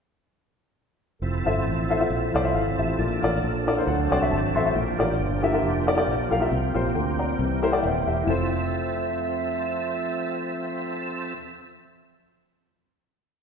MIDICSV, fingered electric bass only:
0, 0, Header, 1, 2, 480
1, 0, Start_track
1, 0, Key_signature, -1, "major"
1, 0, Tempo, 441501
1, 1324, Time_signature, 4, 2, 24, 8
1, 9477, Tempo, 446429
1, 14539, End_track
2, 0, Start_track
2, 0, Title_t, "Fingered electric bass"
2, 0, Program_c, 0, 33
2, 1322, Note_on_c, 0, 29, 80
2, 1550, Note_off_c, 0, 29, 0
2, 1589, Note_on_c, 0, 31, 72
2, 1773, Note_off_c, 0, 31, 0
2, 1804, Note_on_c, 0, 33, 78
2, 2214, Note_off_c, 0, 33, 0
2, 2286, Note_on_c, 0, 34, 82
2, 2513, Note_off_c, 0, 34, 0
2, 2550, Note_on_c, 0, 36, 78
2, 2735, Note_off_c, 0, 36, 0
2, 2766, Note_on_c, 0, 32, 74
2, 2994, Note_off_c, 0, 32, 0
2, 3033, Note_on_c, 0, 33, 73
2, 3216, Note_off_c, 0, 33, 0
2, 3249, Note_on_c, 0, 34, 85
2, 3475, Note_off_c, 0, 34, 0
2, 3516, Note_on_c, 0, 33, 77
2, 3698, Note_off_c, 0, 33, 0
2, 3727, Note_on_c, 0, 34, 89
2, 4135, Note_off_c, 0, 34, 0
2, 4210, Note_on_c, 0, 38, 91
2, 4435, Note_off_c, 0, 38, 0
2, 4475, Note_on_c, 0, 36, 77
2, 4687, Note_on_c, 0, 32, 83
2, 4703, Note_off_c, 0, 36, 0
2, 4912, Note_off_c, 0, 32, 0
2, 4951, Note_on_c, 0, 33, 74
2, 5133, Note_off_c, 0, 33, 0
2, 5165, Note_on_c, 0, 34, 90
2, 5390, Note_off_c, 0, 34, 0
2, 5431, Note_on_c, 0, 33, 70
2, 5612, Note_off_c, 0, 33, 0
2, 5647, Note_on_c, 0, 31, 82
2, 6052, Note_off_c, 0, 31, 0
2, 6127, Note_on_c, 0, 29, 87
2, 6531, Note_off_c, 0, 29, 0
2, 6605, Note_on_c, 0, 34, 75
2, 6828, Note_off_c, 0, 34, 0
2, 6867, Note_on_c, 0, 35, 68
2, 7048, Note_off_c, 0, 35, 0
2, 7083, Note_on_c, 0, 36, 90
2, 7306, Note_off_c, 0, 36, 0
2, 7344, Note_on_c, 0, 34, 75
2, 7526, Note_off_c, 0, 34, 0
2, 7553, Note_on_c, 0, 38, 85
2, 7963, Note_off_c, 0, 38, 0
2, 8036, Note_on_c, 0, 36, 88
2, 8513, Note_on_c, 0, 27, 82
2, 8530, Note_off_c, 0, 36, 0
2, 8741, Note_off_c, 0, 27, 0
2, 8777, Note_on_c, 0, 28, 69
2, 8962, Note_off_c, 0, 28, 0
2, 8992, Note_on_c, 0, 29, 84
2, 12288, Note_off_c, 0, 29, 0
2, 14539, End_track
0, 0, End_of_file